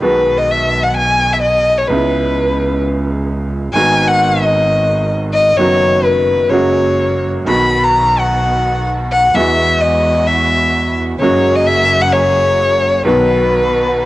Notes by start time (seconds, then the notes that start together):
0.00 B1 B2 D#3 G#3 B3 F#4 B4
0.38 D#5
0.51 E5
0.84 F#5
0.97 G#5
1.33 E5
1.42 D#5
1.78 C#5
1.88 C#2 C#3 G#3 B3 E4 B4
3.74 G#1 G#2 D#3 G#3 B3 G#5
3.78 F#4
4.08 F#5
4.43 D#5
5.34 D#5
5.57 F#1 F#2 D#3 F#3 B3 C#5
5.61 F#4
6.04 B4
6.49 F#1 F#2 C#3 F#3 G#3 A#3 C#5
6.54 F#4
7.45 B1 B2 D#3 F#3 B3 D#4 F#4 B5
7.49 F#4
7.84 A#5
8.19 F#5
9.12 F#5
9.34 E2 E3 G#3 B3 E4 F#4 E5
9.39 F#4
9.81 D#5
10.27 E5
11.19 F#1 F#2 C#3 F#3 G#3 A#3 F#4 G#4 C#5
11.24 F#4
11.56 D#5
11.66 E5
12.02 F#5
12.13 C#5
13.03 B1 B2 D#3 F#3 B3 D#4 B4
13.07 F#4